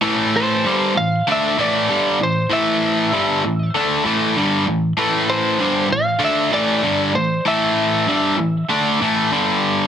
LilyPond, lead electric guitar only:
\new Staff \with { instrumentName = "Lead electric guitar" } { \time 4/4 \key a \minor \tempo 4 = 97 r8 c''4 f''8 e''8 d''4 c''8 | e''2 r2 | r8 c''4 f''8 e''8 d''4 c''8 | e''2 r2 | }